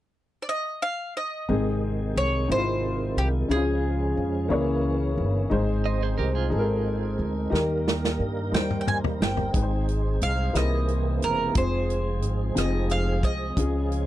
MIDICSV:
0, 0, Header, 1, 7, 480
1, 0, Start_track
1, 0, Key_signature, -4, "major"
1, 0, Tempo, 671141
1, 1066, Time_signature, 6, 3, 24, 8
1, 10059, End_track
2, 0, Start_track
2, 0, Title_t, "Mandolin"
2, 0, Program_c, 0, 25
2, 303, Note_on_c, 0, 74, 55
2, 347, Note_off_c, 0, 74, 0
2, 350, Note_on_c, 0, 75, 71
2, 589, Note_on_c, 0, 77, 78
2, 595, Note_off_c, 0, 75, 0
2, 811, Note_off_c, 0, 77, 0
2, 836, Note_on_c, 0, 75, 62
2, 1282, Note_off_c, 0, 75, 0
2, 1556, Note_on_c, 0, 73, 74
2, 1797, Note_off_c, 0, 73, 0
2, 1800, Note_on_c, 0, 72, 75
2, 2275, Note_on_c, 0, 67, 66
2, 2287, Note_off_c, 0, 72, 0
2, 2339, Note_off_c, 0, 67, 0
2, 2513, Note_on_c, 0, 68, 62
2, 3440, Note_off_c, 0, 68, 0
2, 6111, Note_on_c, 0, 79, 67
2, 6292, Note_off_c, 0, 79, 0
2, 6300, Note_on_c, 0, 79, 55
2, 6348, Note_off_c, 0, 79, 0
2, 6352, Note_on_c, 0, 80, 77
2, 6416, Note_off_c, 0, 80, 0
2, 6595, Note_on_c, 0, 79, 63
2, 7041, Note_off_c, 0, 79, 0
2, 7316, Note_on_c, 0, 77, 80
2, 7554, Note_on_c, 0, 75, 74
2, 7558, Note_off_c, 0, 77, 0
2, 8035, Note_off_c, 0, 75, 0
2, 8038, Note_on_c, 0, 70, 70
2, 8275, Note_off_c, 0, 70, 0
2, 8278, Note_on_c, 0, 72, 78
2, 8996, Note_off_c, 0, 72, 0
2, 8998, Note_on_c, 0, 75, 73
2, 9236, Note_on_c, 0, 77, 81
2, 9239, Note_off_c, 0, 75, 0
2, 9471, Note_on_c, 0, 75, 75
2, 9478, Note_off_c, 0, 77, 0
2, 10059, Note_off_c, 0, 75, 0
2, 10059, End_track
3, 0, Start_track
3, 0, Title_t, "Clean electric guitar"
3, 0, Program_c, 1, 27
3, 4188, Note_on_c, 1, 75, 59
3, 4191, Note_on_c, 1, 72, 46
3, 4301, Note_off_c, 1, 75, 0
3, 4302, Note_off_c, 1, 72, 0
3, 4309, Note_on_c, 1, 68, 48
3, 4313, Note_on_c, 1, 72, 56
3, 4414, Note_off_c, 1, 72, 0
3, 4417, Note_on_c, 1, 70, 64
3, 4422, Note_off_c, 1, 68, 0
3, 4426, Note_on_c, 1, 67, 57
3, 4535, Note_off_c, 1, 70, 0
3, 4540, Note_off_c, 1, 67, 0
3, 4542, Note_on_c, 1, 68, 55
3, 4549, Note_on_c, 1, 65, 50
3, 5235, Note_off_c, 1, 68, 0
3, 5238, Note_off_c, 1, 65, 0
3, 10059, End_track
4, 0, Start_track
4, 0, Title_t, "Upright piano"
4, 0, Program_c, 2, 0
4, 1063, Note_on_c, 2, 60, 64
4, 1068, Note_on_c, 2, 44, 53
4, 1072, Note_on_c, 2, 63, 55
4, 1076, Note_on_c, 2, 68, 64
4, 1181, Control_c, 2, 64, 127
4, 1647, Note_off_c, 2, 60, 0
4, 1652, Note_off_c, 2, 63, 0
4, 1654, Note_off_c, 2, 68, 0
4, 1758, Note_off_c, 2, 44, 0
4, 1776, Note_on_c, 2, 60, 49
4, 1787, Note_on_c, 2, 63, 45
4, 1797, Note_on_c, 2, 64, 48
4, 1838, Note_off_c, 2, 64, 0
4, 1843, Note_on_c, 2, 65, 55
4, 2364, Note_off_c, 2, 60, 0
4, 2369, Note_off_c, 2, 63, 0
4, 2397, Note_off_c, 2, 65, 0
4, 2493, Note_on_c, 2, 61, 54
4, 2505, Note_on_c, 2, 64, 40
4, 2506, Note_on_c, 2, 49, 43
4, 2513, Note_on_c, 2, 68, 62
4, 2516, Control_c, 2, 64, 0
4, 2549, Note_on_c, 2, 65, 55
4, 2552, Note_off_c, 2, 64, 0
4, 2656, Control_c, 2, 64, 127
4, 3082, Note_off_c, 2, 61, 0
4, 3092, Note_off_c, 2, 68, 0
4, 3110, Note_off_c, 2, 65, 0
4, 3197, Note_off_c, 2, 49, 0
4, 3207, Note_on_c, 2, 58, 67
4, 3213, Note_on_c, 2, 61, 59
4, 3215, Note_on_c, 2, 49, 60
4, 3218, Note_on_c, 2, 64, 56
4, 3223, Note_on_c, 2, 68, 63
4, 3229, Note_on_c, 2, 73, 69
4, 3235, Control_c, 2, 64, 0
4, 3361, Control_c, 2, 64, 127
4, 3799, Note_off_c, 2, 58, 0
4, 3802, Note_off_c, 2, 61, 0
4, 3805, Note_off_c, 2, 64, 0
4, 3807, Note_off_c, 2, 68, 0
4, 3810, Note_off_c, 2, 73, 0
4, 3911, Note_off_c, 2, 49, 0
4, 3931, Note_on_c, 2, 63, 66
4, 3942, Note_on_c, 2, 68, 62
4, 3943, Note_on_c, 2, 44, 57
4, 3949, Note_on_c, 2, 72, 76
4, 3956, Control_c, 2, 64, 0
4, 4066, Control_c, 2, 64, 127
4, 4521, Note_off_c, 2, 63, 0
4, 4527, Note_off_c, 2, 68, 0
4, 4530, Note_off_c, 2, 72, 0
4, 4636, Note_off_c, 2, 44, 0
4, 4646, Note_on_c, 2, 63, 62
4, 4658, Note_on_c, 2, 68, 54
4, 4667, Note_on_c, 2, 69, 55
4, 4713, Note_off_c, 2, 69, 0
4, 4713, Note_on_c, 2, 70, 70
4, 5239, Note_off_c, 2, 63, 0
4, 5244, Note_off_c, 2, 68, 0
4, 5272, Note_off_c, 2, 70, 0
4, 5365, Note_on_c, 2, 63, 64
4, 5374, Note_on_c, 2, 51, 52
4, 5375, Note_on_c, 2, 67, 58
4, 5387, Note_on_c, 2, 70, 71
4, 5395, Control_c, 2, 64, 0
4, 5519, Control_c, 2, 64, 127
4, 5958, Note_off_c, 2, 63, 0
4, 5963, Note_off_c, 2, 67, 0
4, 5969, Note_off_c, 2, 70, 0
4, 6071, Note_off_c, 2, 51, 0
4, 6088, Note_on_c, 2, 63, 51
4, 6095, Note_on_c, 2, 55, 45
4, 6104, Note_on_c, 2, 72, 56
4, 6680, Note_off_c, 2, 63, 0
4, 6683, Note_off_c, 2, 55, 0
4, 6688, Note_off_c, 2, 72, 0
4, 6818, Note_on_c, 2, 63, 49
4, 6825, Note_on_c, 2, 68, 48
4, 6827, Note_on_c, 2, 44, 45
4, 6835, Control_c, 2, 64, 0
4, 6837, Note_on_c, 2, 71, 47
4, 6878, Note_off_c, 2, 71, 0
4, 6882, Note_on_c, 2, 72, 58
4, 6979, Control_c, 2, 64, 127
4, 7405, Note_off_c, 2, 63, 0
4, 7408, Note_off_c, 2, 68, 0
4, 7437, Note_off_c, 2, 72, 0
4, 7517, Note_off_c, 2, 44, 0
4, 7534, Note_on_c, 2, 58, 57
4, 7537, Note_on_c, 2, 63, 50
4, 7541, Note_on_c, 2, 48, 51
4, 7541, Note_on_c, 2, 64, 49
4, 7544, Note_on_c, 2, 68, 47
4, 7553, Note_on_c, 2, 72, 58
4, 7554, Control_c, 2, 64, 0
4, 7681, Control_c, 2, 64, 127
4, 8123, Note_off_c, 2, 58, 0
4, 8124, Note_off_c, 2, 63, 0
4, 8126, Note_off_c, 2, 64, 0
4, 8128, Note_off_c, 2, 68, 0
4, 8132, Note_off_c, 2, 72, 0
4, 8234, Note_off_c, 2, 48, 0
4, 8250, Note_on_c, 2, 60, 57
4, 8260, Note_on_c, 2, 65, 50
4, 8267, Note_on_c, 2, 68, 62
4, 8273, Control_c, 2, 64, 0
4, 8400, Control_c, 2, 64, 127
4, 8840, Note_off_c, 2, 60, 0
4, 8846, Note_off_c, 2, 65, 0
4, 8849, Note_off_c, 2, 68, 0
4, 8977, Note_on_c, 2, 60, 54
4, 8988, Note_on_c, 2, 65, 48
4, 8997, Note_on_c, 2, 68, 59
4, 9564, Note_off_c, 2, 60, 0
4, 9569, Note_off_c, 2, 65, 0
4, 9574, Note_off_c, 2, 68, 0
4, 9700, Note_on_c, 2, 61, 53
4, 9709, Note_on_c, 2, 49, 45
4, 9712, Control_c, 2, 64, 0
4, 9714, Note_on_c, 2, 65, 50
4, 9721, Note_on_c, 2, 68, 66
4, 9842, Control_c, 2, 64, 127
4, 10059, Note_off_c, 2, 49, 0
4, 10059, Note_off_c, 2, 61, 0
4, 10059, Note_off_c, 2, 65, 0
4, 10059, Note_off_c, 2, 68, 0
4, 10059, End_track
5, 0, Start_track
5, 0, Title_t, "Tonewheel organ"
5, 0, Program_c, 3, 16
5, 1066, Note_on_c, 3, 51, 51
5, 1067, Note_on_c, 3, 48, 45
5, 1069, Note_on_c, 3, 56, 42
5, 2491, Note_off_c, 3, 51, 0
5, 2492, Note_off_c, 3, 48, 0
5, 2497, Note_on_c, 3, 61, 49
5, 2498, Note_on_c, 3, 53, 52
5, 3205, Note_off_c, 3, 56, 0
5, 3208, Note_on_c, 3, 58, 48
5, 3211, Note_on_c, 3, 52, 53
5, 3215, Note_off_c, 3, 53, 0
5, 3927, Note_off_c, 3, 61, 0
5, 3929, Note_off_c, 3, 58, 0
5, 3931, Note_off_c, 3, 52, 0
5, 3938, Note_on_c, 3, 63, 53
5, 3940, Note_on_c, 3, 60, 53
5, 3941, Note_on_c, 3, 56, 50
5, 5368, Note_off_c, 3, 60, 0
5, 5369, Note_off_c, 3, 56, 0
5, 5370, Note_on_c, 3, 55, 49
5, 5373, Note_on_c, 3, 58, 48
5, 5374, Note_on_c, 3, 70, 58
5, 6803, Note_off_c, 3, 55, 0
5, 6804, Note_off_c, 3, 58, 0
5, 6805, Note_off_c, 3, 70, 0
5, 6810, Note_on_c, 3, 60, 50
5, 6812, Note_on_c, 3, 68, 52
5, 6818, Note_on_c, 3, 56, 47
5, 7513, Note_off_c, 3, 63, 0
5, 7532, Note_off_c, 3, 68, 0
5, 7535, Note_off_c, 3, 56, 0
5, 7547, Note_on_c, 3, 58, 49
5, 7549, Note_on_c, 3, 68, 64
5, 7553, Note_on_c, 3, 52, 49
5, 8259, Note_off_c, 3, 58, 0
5, 8262, Note_off_c, 3, 52, 0
5, 8266, Note_on_c, 3, 53, 54
5, 8266, Note_on_c, 3, 56, 45
5, 9669, Note_off_c, 3, 60, 0
5, 9685, Note_off_c, 3, 68, 0
5, 9706, Note_on_c, 3, 61, 49
5, 9710, Note_on_c, 3, 68, 57
5, 10059, Note_off_c, 3, 53, 0
5, 10059, Note_off_c, 3, 56, 0
5, 10059, Note_off_c, 3, 61, 0
5, 10059, Note_off_c, 3, 68, 0
5, 10059, End_track
6, 0, Start_track
6, 0, Title_t, "Upright bass"
6, 0, Program_c, 4, 32
6, 1064, Note_on_c, 4, 32, 77
6, 1516, Note_off_c, 4, 32, 0
6, 1544, Note_on_c, 4, 36, 71
6, 1766, Note_off_c, 4, 36, 0
6, 1784, Note_on_c, 4, 32, 69
6, 2236, Note_off_c, 4, 32, 0
6, 2265, Note_on_c, 4, 36, 61
6, 2486, Note_off_c, 4, 36, 0
6, 2499, Note_on_c, 4, 37, 73
6, 2954, Note_off_c, 4, 37, 0
6, 2985, Note_on_c, 4, 41, 65
6, 3206, Note_off_c, 4, 41, 0
6, 3219, Note_on_c, 4, 37, 78
6, 3702, Note_on_c, 4, 31, 71
6, 3713, Note_off_c, 4, 37, 0
6, 3924, Note_off_c, 4, 31, 0
6, 3941, Note_on_c, 4, 32, 83
6, 4395, Note_off_c, 4, 32, 0
6, 4425, Note_on_c, 4, 36, 72
6, 4646, Note_off_c, 4, 36, 0
6, 4662, Note_on_c, 4, 32, 72
6, 5115, Note_off_c, 4, 32, 0
6, 5142, Note_on_c, 4, 38, 72
6, 5364, Note_off_c, 4, 38, 0
6, 5381, Note_on_c, 4, 39, 80
6, 5834, Note_off_c, 4, 39, 0
6, 5861, Note_on_c, 4, 43, 69
6, 6084, Note_off_c, 4, 43, 0
6, 6098, Note_on_c, 4, 39, 63
6, 6553, Note_off_c, 4, 39, 0
6, 6585, Note_on_c, 4, 31, 65
6, 6806, Note_off_c, 4, 31, 0
6, 6825, Note_on_c, 4, 32, 80
6, 7276, Note_off_c, 4, 32, 0
6, 7307, Note_on_c, 4, 36, 76
6, 7527, Note_off_c, 4, 36, 0
6, 7543, Note_on_c, 4, 36, 71
6, 7996, Note_off_c, 4, 36, 0
6, 8026, Note_on_c, 4, 28, 67
6, 8246, Note_off_c, 4, 28, 0
6, 8263, Note_on_c, 4, 29, 80
6, 8741, Note_off_c, 4, 29, 0
6, 8741, Note_on_c, 4, 32, 66
6, 8964, Note_off_c, 4, 32, 0
6, 8982, Note_on_c, 4, 29, 76
6, 9435, Note_off_c, 4, 29, 0
6, 9462, Note_on_c, 4, 36, 59
6, 9684, Note_off_c, 4, 36, 0
6, 9707, Note_on_c, 4, 37, 78
6, 10059, Note_off_c, 4, 37, 0
6, 10059, End_track
7, 0, Start_track
7, 0, Title_t, "Drums"
7, 5396, Note_on_c, 9, 38, 39
7, 5468, Note_off_c, 9, 38, 0
7, 5633, Note_on_c, 9, 38, 53
7, 5704, Note_off_c, 9, 38, 0
7, 5752, Note_on_c, 9, 38, 47
7, 5824, Note_off_c, 9, 38, 0
7, 6115, Note_on_c, 9, 38, 66
7, 6186, Note_off_c, 9, 38, 0
7, 6225, Note_on_c, 9, 45, 58
7, 6296, Note_off_c, 9, 45, 0
7, 6346, Note_on_c, 9, 45, 65
7, 6417, Note_off_c, 9, 45, 0
7, 6468, Note_on_c, 9, 43, 65
7, 6539, Note_off_c, 9, 43, 0
7, 6595, Note_on_c, 9, 38, 76
7, 6666, Note_off_c, 9, 38, 0
7, 6702, Note_on_c, 9, 43, 62
7, 6773, Note_off_c, 9, 43, 0
7, 6823, Note_on_c, 9, 36, 90
7, 6824, Note_on_c, 9, 42, 73
7, 6895, Note_off_c, 9, 36, 0
7, 6895, Note_off_c, 9, 42, 0
7, 7070, Note_on_c, 9, 42, 41
7, 7141, Note_off_c, 9, 42, 0
7, 7305, Note_on_c, 9, 42, 46
7, 7377, Note_off_c, 9, 42, 0
7, 7547, Note_on_c, 9, 42, 64
7, 7560, Note_on_c, 9, 37, 88
7, 7618, Note_off_c, 9, 42, 0
7, 7632, Note_off_c, 9, 37, 0
7, 7784, Note_on_c, 9, 42, 36
7, 7856, Note_off_c, 9, 42, 0
7, 8025, Note_on_c, 9, 42, 38
7, 8097, Note_off_c, 9, 42, 0
7, 8260, Note_on_c, 9, 42, 73
7, 8264, Note_on_c, 9, 36, 93
7, 8332, Note_off_c, 9, 42, 0
7, 8336, Note_off_c, 9, 36, 0
7, 8511, Note_on_c, 9, 42, 41
7, 8582, Note_off_c, 9, 42, 0
7, 8742, Note_on_c, 9, 42, 45
7, 8813, Note_off_c, 9, 42, 0
7, 8987, Note_on_c, 9, 42, 66
7, 9001, Note_on_c, 9, 37, 82
7, 9058, Note_off_c, 9, 42, 0
7, 9072, Note_off_c, 9, 37, 0
7, 9222, Note_on_c, 9, 42, 41
7, 9294, Note_off_c, 9, 42, 0
7, 9464, Note_on_c, 9, 36, 62
7, 9464, Note_on_c, 9, 42, 39
7, 9535, Note_off_c, 9, 36, 0
7, 9536, Note_off_c, 9, 42, 0
7, 9705, Note_on_c, 9, 36, 82
7, 9707, Note_on_c, 9, 42, 72
7, 9776, Note_off_c, 9, 36, 0
7, 9778, Note_off_c, 9, 42, 0
7, 9953, Note_on_c, 9, 42, 44
7, 10025, Note_off_c, 9, 42, 0
7, 10059, End_track
0, 0, End_of_file